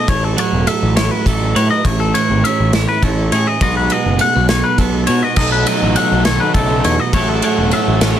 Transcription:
Already playing: clean electric guitar A3 A4
0.08 picked electric bass A1, clean electric guitar A2 C#5, kick, ride
0.24 clean electric guitar A4
0.37 clean electric guitar F#3 C#5, ride
0.53 picked electric bass E1
0.67 clean electric guitar A3 E5, ride
0.83 picked electric bass A1
0.96 clean electric guitar E4 C#5, snare, ride
1.11 clean electric guitar B4
1.26 picked electric bass A1, clean electric guitar A3 A4, kick, ride
1.55 picked electric bass A2, clean electric guitar B4 C#5, ride
1.71 clean electric guitar D#5
1.84 picked electric bass A1, clean electric guitar A2 C#5, kick, ride
2.00 clean electric guitar A4
2.14 clean electric guitar E3 C#5, ride
2.30 picked electric bass G#1
2.44 clean electric guitar C#4 E5, ride
2.60 picked electric bass A1
2.73 clean electric guitar E4 C#5, snare, ride
2.89 clean electric guitar B4
3.03 picked electric bass A1, clean electric guitar C#4 A4, kick, ride
3.32 picked electric bass A2, clean electric guitar G#4 C#5, ride
3.47 clean electric guitar D#5
3.61 picked electric bass B1, clean electric guitar B2 G#3 B3 D#4 D#5, kick, ride
3.65 clean electric guitar F#4
3.77 clean electric guitar B4
3.90 clean electric guitar G#3 D#5, ride
4.06 picked electric bass F#1
4.19 clean electric guitar A3 F#5, ride
4.36 picked electric bass B1, clean electric guitar B3
4.49 clean electric guitar D#4 C#5, snare, ride
4.64 clean electric guitar B4
4.78 picked electric bass B1, clean electric guitar B3 A4, kick, ride
5.07 picked electric bass B2, clean electric guitar F#4 C#5, ride
5.23 clean electric guitar D#5
5.36 picked electric bass B1, clean electric guitar B2 F#3 A3 D#5, overdriven electric guitar F#3 A3 D#4 A4, kick, crash
5.41 clean electric guitar D#4 A4
5.52 clean electric guitar B4
5.67 clean electric guitar F#3 D#5, overdriven electric guitar F#3 A3 D#4 A4, ride
5.82 picked electric bass A1
5.96 overdriven electric guitar F#3 A3 D#4 A4, clean electric guitar A3 F#5, ride
6.12 picked electric bass B1
6.25 clean electric guitar D#3 C#5, overdriven electric guitar F#3 A3 D#4 A4, snare, ride
6.40 clean electric guitar B4
6.54 picked electric bass B1, clean electric guitar C#3 A4, overdriven electric guitar F#3 A3 D#4 A4, kick, ride
6.84 picked electric bass E2, clean electric guitar B2 C#5, ride
7.00 clean electric guitar D#5
7.13 picked electric bass A1, clean electric guitar A2 F#3 A3 E4 C#5, overdriven electric guitar A3 C#4 F#4 A4, kick, ride
7.17 clean electric guitar A4
7.29 clean electric guitar A4
7.42 clean electric guitar F#3 C#5, overdriven electric guitar A3 C#4 F#4 A4, ride
7.58 picked electric bass E1
7.71 overdriven electric guitar A3 C#4 F#4 A4, clean electric guitar A3 E5, ride
7.88 picked electric bass A1
8.01 overdriven electric guitar A3 C#4 F#4 A4, clean electric guitar C#4 C#5, snare, ride
8.16 clean electric guitar E4

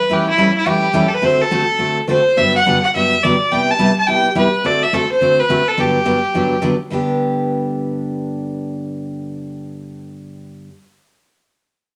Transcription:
Already playing: fiddle B4
0.10 steel-string acoustic guitar A2 E3 G3 C#4 E4 A4, fiddle G4
0.29 fiddle E4
0.38 steel-string acoustic guitar A2 E3 G3 C#4 E4 A4
0.57 fiddle E4
0.66 steel-string acoustic guitar A2 E3 G3 C#4 E4 A4, fiddle G4
0.93 steel-string acoustic guitar A2 E3 G3 C#4 E4 A4
1.09 fiddle A4
1.14 fiddle B4
1.22 steel-string acoustic guitar D3 A3 C4 F#4 A4, fiddle C5
1.42 fiddle A4
1.51 steel-string acoustic guitar D3 A3 C4 F#4 A4
1.79 steel-string acoustic guitar D3 A3 C4 F#4 A4
2.07 steel-string acoustic guitar D3 A3 C4 F#4 A4, fiddle C5
2.37 steel-string acoustic guitar G2 D3 F#3 B3 D4 G4, fiddle E5
2.56 fiddle F#5
2.66 steel-string acoustic guitar G2 D3 F#3 B3 D4 G4
2.83 fiddle F#5
2.95 steel-string acoustic guitar G2 D3 F#3 B3 D4 G4, fiddle E5
3.23 steel-string acoustic guitar G2 D3 F#3 B3 D4 G4, fiddle D5
3.52 steel-string acoustic guitar C3 G3 B3 E4 G4, fiddle G5
3.71 fiddle A5
3.79 steel-string acoustic guitar C3 G3 B3 E4 G4
3.98 fiddle A5
4.07 steel-string acoustic guitar C3 G3 B3 E4 G4, fiddle G5
4.35 steel-string acoustic guitar C3 G3 B3 E4 G4, fiddle B4
4.64 steel-string acoustic guitar D3 A3 C4 F#4 A4, fiddle D5
4.83 fiddle E5
4.93 steel-string acoustic guitar D3 A3 C4 F#4 A4, fiddle A4
5.11 fiddle C5
5.21 steel-string acoustic guitar D3 A3 C4 F#4 A4
5.40 fiddle B4
5.49 steel-string acoustic guitar D3 A3 C4 F#4 A4
5.68 fiddle A4
5.77 steel-string acoustic guitar G2 D3 F#3 B3 D4 G4, fiddle G4
6.05 steel-string acoustic guitar G2 D3 F#3 B3 D4 G4
6.34 steel-string acoustic guitar G2 D3 F#3 B3 D4 G4
6.62 steel-string acoustic guitar G2 D3 F#3 B3 D4 G4
6.90 steel-string acoustic guitar G2 D3 B3 D4 G4

